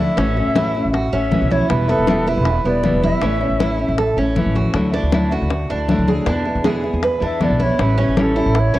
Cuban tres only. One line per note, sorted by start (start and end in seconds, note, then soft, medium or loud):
0.00 0.17 E4 medium
0.17 0.54 C#4 medium
0.56 0.93 E4 medium
0.93 1.12 F#4 medium
1.13 1.50 C#4 medium
1.51 1.88 E4 medium
1.89 2.26 B3 medium
2.27 2.64 E4 medium
2.66 3.02 B3 medium
3.03 3.22 E4 medium
3.23 3.59 C#4 medium
3.60 3.97 E4 medium
3.98 4.17 A4 medium
4.18 4.55 C#4 medium
4.56 4.93 F#4 medium
4.94 5.31 D4 medium
5.32 5.69 F#4 medium
5.70 6.07 D4 medium
6.08 6.26 G#4 medium
6.27 6.64 D4 medium
6.65 7.02 G#4 medium
7.04 7.22 B4 medium
7.22 7.59 D4 medium
7.60 7.97 E4 medium
7.98 8.35 C#4 medium
8.36 8.73 E4 medium
8.74 8.79 C#4 medium